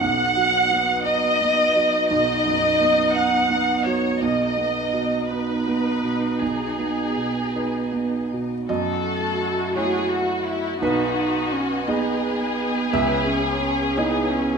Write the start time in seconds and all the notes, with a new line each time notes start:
0.00 B1 B3 D#4 F#4 D#5 F#5
0.37 F#3
0.71 B3
1.04 D#4 D#5
1.41 B3
1.76 F#3
2.10 B1 D#5
2.46 F#2
2.81 B3
3.14 D#4 F#5
3.50 B3
3.86 F#3 C#5
4.21 B1 B3 D#4 D#5
4.57 B3
4.93 B2
5.28 D#4 B4
5.67 B3
6.04 B2
6.40 B1 G#4
6.79 B3
7.17 B2
7.55 D#4 B4
7.92 B3
8.33 B2
8.67 F#2 A3 E4 F#4 A4 D#5
9.76 A3 E4 F#4 G#4 C#5
10.10 F#4
10.46 E4
10.81 B1 B3 D#4 F#4 B4 D#5 G#5
11.17 D#4
11.52 C#4
11.86 B3 D#4 G#4 D#5
12.92 C#2 B3 C#5 E5
13.27 C#4
13.62 C#4
13.97 B3 D#4 E4 G#4 D#5
14.30 C#4